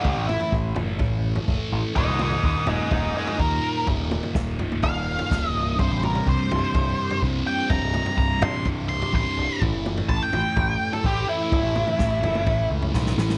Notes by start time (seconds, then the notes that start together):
0.03 C#2 A2 E3 A3 E4 G4, kick, floor tom
0.17 A1
0.28 E4, mid tom
0.40 floor tom
0.52 A1, kick
0.75 F#1 E3 A3, floor tom, mid tom
0.79 A2
0.99 A1, kick, floor tom
1.36 floor tom
1.45 F#1 A2 E3 A3, kick
1.73 A1
1.94 D#1 D#2 A#2 D#3 C5 D#5, kick, floor tom
2.08 C2
2.19 C5, mid tom
2.23 D#5
2.31 floor tom
2.43 D#2 C5 D#5, kick
2.67 D#1 D#2 A#2 D#3 D#4 C5, floor tom, mid tom
2.91 D#1 D#4 C5, kick, floor tom
3.17 D#4 C5
3.27 floor tom
3.38 D#2 A#2 D#3 A#4, kick
3.86 G1 D#2 A#2 D#3, kick, floor tom
4.00 D#1
4.11 mid tom
4.23 floor tom
4.35 D#1, kick, snare
4.58 C1 D#2 A#2 D#3, floor tom, mid tom
4.72 mid tom
4.82 D#1 F5, kick, floor tom
5.19 floor tom
5.29 D1 D#2 A#2 D#3, kick, snare, mid tom
5.49 D#5
5.55 C1
5.76 C1 C2 G2 C3 C5, kick, floor tom
5.91 A1
6.03 A#4, mid tom
6.15 floor tom
6.26 C2 C5, kick
6.48 C1 G2 C3, floor tom, mid tom
6.52 C2
6.74 C1, kick, floor tom
7.10 floor tom
7.21 C2 G2 C3, kick
7.47 G5
7.68 F1 C2 G2 C3 A#5, kick, floor tom
7.82 C1
7.94 mid tom
8.06 floor tom
8.17 C1 A#5, kick
8.41 A1 C2 G2 C3 C6, floor tom, mid tom
8.65 C1, kick, floor tom
8.89 C6
9.02 floor tom
9.12 A1 C2 G2 C3 C6, kick
9.37 C1
9.59 A1 A2 E3 A3, kick, floor tom
9.72 F#1
9.86 mid tom
9.97 floor tom
10.09 A1 A5, kick
10.23 G5
10.31 A1 A2 E3 A3, floor tom, mid tom
10.56 A1, kick, floor tom
10.93 A4, floor tom
11.04 A1 A2 E3 A3 G4, kick
11.29 E4
11.50 C#1 A2 E3 A3, kick, floor tom
11.63 A1
11.75 mid tom
11.87 floor tom
11.99 A1, kick, snare
12.21 F#1 A2 E3 A3, floor tom, mid tom
12.35 mid tom
12.47 A1, kick, floor tom
12.70 C#2
12.82 floor tom
12.92 B1 A2 E3 A3, kick, snare
13.06 snare
13.18 A1, snare
13.29 snare